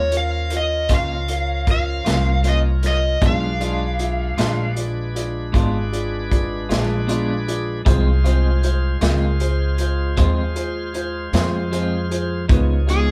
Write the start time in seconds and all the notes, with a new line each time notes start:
Already playing: D#2 F3 C#4 A#4 C#5
0.11 F4 A#4 C#5, closed hi-hat
0.17 F5
0.50 F4 A#4 C#5, closed hi-hat
0.57 D#5
0.89 C#2 A#2 A#3 C#4 F4 A#4 D#5, kick, closed hi-hat
0.94 F5
1.28 F4 A#4 C#5, closed hi-hat
1.67 F4 A#4 C#5, kick, closed hi-hat
1.71 F5
2.05 C2 A#3 C#4 F4 A#4 C#5, snare, closed hi-hat
2.43 A#2 A#3 C#4 F4 A#4 C#5, closed hi-hat
2.49 D#5
2.82 F4 A#4 C#5, snare, closed hi-hat
2.87 D#5
3.21 B1 B2 G#3 D4 F4 G#4 B4 D5, kick, closed hi-hat
3.26 F5
3.59 G#3 D4 F4 G#4 D5, closed hi-hat
3.98 F4 G#4 E5, closed hi-hat
4.37 A#1 G#3 D4 F4 G#4 D5, snare, closed hi-hat
4.75 F4 G#4 D5, closed hi-hat
5.15 F4 G#4 D5, closed hi-hat
5.52 G#1 B2 G#3 D4 F4 G#4 F5, kick, closed hi-hat
5.92 F4 G#4 D5, closed hi-hat
6.30 F4 G#4 D5, kick, closed hi-hat
6.69 A#1 G#3 D4 F4 G#4 D5, snare, closed hi-hat
7.07 B2 G#3 D4 F4 G#4 D5, closed hi-hat
7.47 F4 G#4 D5, closed hi-hat
7.85 C2 F3 G#3 C4 F4 G#4 C5, kick, closed hi-hat
8.24 G#3 C4 F4 G#4 C5, closed hi-hat
8.63 F4 G#4 C5, closed hi-hat
9.01 C#2 G#3 C4 F4 G#4 A#4, snare, closed hi-hat
9.40 F4 G#4 C5, closed hi-hat
9.78 F4 G#4 C5, closed hi-hat
10.16 D#2 F3 G#3 C4 F4 G#4 C5, kick, closed hi-hat
10.55 F4 G#4 C5, closed hi-hat
10.93 F4 G#4 C5, closed hi-hat
11.33 F2 G#3 C4 F4 G#4 C5, snare, closed hi-hat
11.71 F3 G#3 C4 F4 G#4 C5, closed hi-hat
12.10 F4 G#4 C5, closed hi-hat
12.48 C#2 C#3 F3 G#3 B3 C#4 D#4 F4 G#4 B4, kick, closed hi-hat
12.86 G#3 B3 D#4 F4 G#4, closed hi-hat